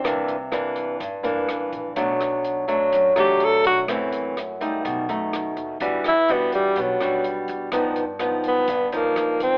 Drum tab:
HH |xxxxxxxx|xxxxxxxx|xxxxxxxx|xxxxxxxx|
SD |r-r---r-|-r---r--|r-r---r-|-r---r--|
BD |o---o--o|o---o---|o---o---|o---o---|

HH |xxxxxxxx|
SD |r-r---r-|
BD |o---o--o|